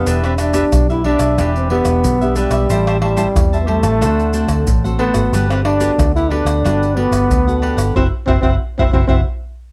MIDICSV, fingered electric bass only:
0, 0, Header, 1, 2, 480
1, 0, Start_track
1, 0, Key_signature, 1, "minor"
1, 0, Tempo, 657174
1, 51, Time_signature, 4, 2, 24, 8
1, 7102, End_track
2, 0, Start_track
2, 0, Title_t, "Fingered electric bass"
2, 0, Program_c, 0, 33
2, 50, Note_on_c, 0, 28, 92
2, 459, Note_off_c, 0, 28, 0
2, 530, Note_on_c, 0, 35, 80
2, 837, Note_off_c, 0, 35, 0
2, 871, Note_on_c, 0, 35, 78
2, 1008, Note_on_c, 0, 28, 89
2, 1019, Note_off_c, 0, 35, 0
2, 1316, Note_off_c, 0, 28, 0
2, 1353, Note_on_c, 0, 28, 89
2, 1464, Note_off_c, 0, 28, 0
2, 1487, Note_on_c, 0, 35, 83
2, 1796, Note_off_c, 0, 35, 0
2, 1828, Note_on_c, 0, 35, 83
2, 1941, Note_off_c, 0, 35, 0
2, 1969, Note_on_c, 0, 33, 103
2, 2379, Note_off_c, 0, 33, 0
2, 2450, Note_on_c, 0, 40, 88
2, 2797, Note_on_c, 0, 33, 83
2, 2808, Note_off_c, 0, 40, 0
2, 2932, Note_on_c, 0, 38, 96
2, 2943, Note_off_c, 0, 33, 0
2, 3239, Note_off_c, 0, 38, 0
2, 3271, Note_on_c, 0, 38, 87
2, 3383, Note_off_c, 0, 38, 0
2, 3409, Note_on_c, 0, 33, 77
2, 3717, Note_off_c, 0, 33, 0
2, 3756, Note_on_c, 0, 32, 82
2, 3866, Note_off_c, 0, 32, 0
2, 3889, Note_on_c, 0, 31, 94
2, 4299, Note_off_c, 0, 31, 0
2, 4370, Note_on_c, 0, 38, 79
2, 4677, Note_off_c, 0, 38, 0
2, 4712, Note_on_c, 0, 38, 82
2, 4848, Note_on_c, 0, 31, 94
2, 4859, Note_off_c, 0, 38, 0
2, 5156, Note_off_c, 0, 31, 0
2, 5194, Note_on_c, 0, 31, 82
2, 5304, Note_off_c, 0, 31, 0
2, 5330, Note_on_c, 0, 38, 88
2, 5637, Note_off_c, 0, 38, 0
2, 5673, Note_on_c, 0, 31, 80
2, 5784, Note_off_c, 0, 31, 0
2, 5808, Note_on_c, 0, 30, 94
2, 5900, Note_off_c, 0, 30, 0
2, 6040, Note_on_c, 0, 30, 93
2, 6135, Note_off_c, 0, 30, 0
2, 6151, Note_on_c, 0, 30, 89
2, 6251, Note_off_c, 0, 30, 0
2, 6419, Note_on_c, 0, 30, 93
2, 6506, Note_off_c, 0, 30, 0
2, 6523, Note_on_c, 0, 30, 102
2, 6617, Note_off_c, 0, 30, 0
2, 6635, Note_on_c, 0, 30, 91
2, 6733, Note_off_c, 0, 30, 0
2, 7102, End_track
0, 0, End_of_file